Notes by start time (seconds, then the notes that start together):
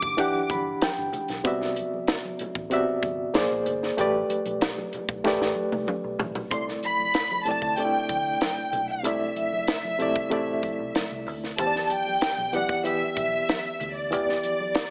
Already playing: E3 D4 G4 F#5 D6
0.02 F#1, kick
0.17 E3 D4 G4 F#5, kick, closed hi-hat, muted conga
0.35 muted fingered electric bass stroke, muted conga
0.49 G1 B5, kick, closed hi-hat, high conga
0.82 G5, muted fingered electric bass stroke, snare, closed hi-hat, muted conga, high conga
0.97 G1, muted conga
1.13 closed hi-hat, low conga
1.28 B1, snare, closed hi-hat
1.44 C2 C3 B3 F#4 D5 E5, kick, closed hi-hat, muted conga, low conga
1.61 snare, muted conga
1.76 closed hi-hat, high conga
1.94 high conga
2.07 snare, closed hi-hat
2.25 muted conga, high conga
2.39 muted fingered electric bass stroke, closed hi-hat, high conga, low conga
2.55 A1, kick
2.70 C3 B3 F#4 D5 E5, closed hi-hat, muted conga
2.89 muted conga
3.02 G1, kick, closed hi-hat, high conga
3.34 A#1 A#3 G#4 C5 D5, snare, closed hi-hat, high conga
3.51 A#1, muted conga
3.66 G1, closed hi-hat, low conga
3.83 snare
3.97 A1 A3 G4 B4 D5, closed hi-hat, muted conga, low conga
4.15 muted conga
4.29 muted fingered electric bass stroke, closed hi-hat, high conga
4.46 B1, closed hi-hat, high conga
4.61 snare, closed hi-hat, muted conga
4.78 muted conga, high conga
4.93 muted fingered electric bass stroke, closed hi-hat, high conga, low conga
5.09 B1, kick
5.24 A1 A3 G4 B4 D5, kick, snare, muted conga
5.41 A1, snare
5.55 high conga
5.72 C2, high tom
5.87 mid tom, muted conga, high conga
6.04 B1
6.19 A1, floor tom, low conga
6.35 B1, floor tom
6.50 C2 C3 A3 E4 D5 C6, kick, closed hi-hat, low conga
6.68 snare, muted conga
6.82 B5, closed hi-hat, high conga
6.99 high conga
7.14 snare, closed hi-hat, muted conga
7.31 muted conga, high conga
7.45 C3 A3 E4 D5 A5, muted fingered electric bass stroke, closed hi-hat, high conga, low conga
7.62 D2, kick
7.77 C3 A3 D4 D5 G5, closed hi-hat
7.85 E4
7.94 muted fingered electric bass stroke, muted conga
8.09 D2, kick, closed hi-hat, high conga
8.41 snare, closed hi-hat, muted conga, high conga
8.58 muted conga
8.73 B1, closed hi-hat, low conga
8.89 E5
9.03 C2 C3 A3 E4 D5, closed hi-hat, muted conga, low conga
9.21 muted conga
9.36 closed hi-hat, high conga
9.53 high conga
9.68 snare, closed hi-hat, muted conga
9.84 high conga
9.99 C3 A3 E4 D5, muted fingered electric bass stroke, closed hi-hat, high conga, low conga
10.16 C2, kick
10.30 A1 C3 A3 E4 D5, kick, closed hi-hat, muted conga
10.48 muted conga
10.63 kick, closed hi-hat, high conga
10.79 B1
10.95 snare, closed hi-hat, muted conga, high conga
11.11 C2, muted conga
11.27 D2, open hi-hat, low conga
11.44 snare
11.57 E2 E3 B3 G4 C5 A5, kick, closed hi-hat, muted conga, low conga
11.67 D5
11.75 snare, muted conga
11.84 A5
11.89 G5, closed hi-hat, high conga
12.07 high conga
12.21 muted fingered electric bass stroke, snare, closed hi-hat, muted conga
12.38 B1, high conga
12.53 E3 B3 G4 D5 F#5, closed hi-hat, high conga, low conga
12.69 kick
12.84 E3 B3 G4 E5, closed hi-hat, muted conga
13.01 muted fingered electric bass stroke, muted conga
13.17 B1, kick, closed hi-hat, high conga
13.49 snare, closed hi-hat, high conga
13.65 muted conga
13.80 D2, closed hi-hat, low conga
13.97 D5
14.11 E2 E3 B3 G4 D5, closed hi-hat, low conga
14.29 snare, muted conga
14.43 closed hi-hat, high conga
14.60 high conga
14.75 snare, closed hi-hat, muted conga